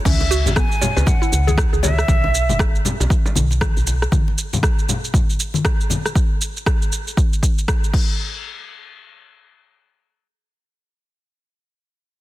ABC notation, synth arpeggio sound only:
X:1
M:4/4
L:1/16
Q:"Swing 16ths" 1/4=118
K:C#m
V:1 name="Synth arpeggio sound"
C z F z B, z c B z E z G z G c z | z16 | z16 | z16 |
z16 | z16 |]